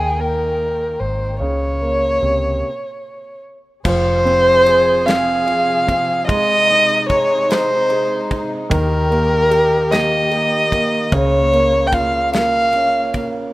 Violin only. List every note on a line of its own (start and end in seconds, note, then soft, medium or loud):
0.00 0.22 G#4 medium
0.21 1.01 A#4 medium
1.00 1.39 C5 medium
1.40 3.40 C#5 medium
3.85 5.07 C5 loud
5.06 6.27 F5 loud
6.28 7.05 D#5 loud
7.10 7.53 C#5 loud
7.51 8.42 C5 loud
8.73 9.93 A#4 loud
9.91 11.15 D#5 loud
11.13 11.89 C#5 loud
11.87 11.95 G5 medium
11.94 12.34 F5 loud
12.35 13.21 F5 loud